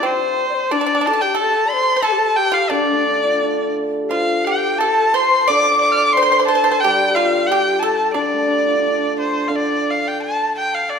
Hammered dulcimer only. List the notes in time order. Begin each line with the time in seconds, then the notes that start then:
Already playing: G3
2.70 D3
2.91 A3
3.10 D4
3.25 F4
3.43 A4
4.10 F3
5.49 D3
6.83 G3
8.15 D3
8.33 A3
8.48 D4
8.66 F4
8.83 A4
9.49 D3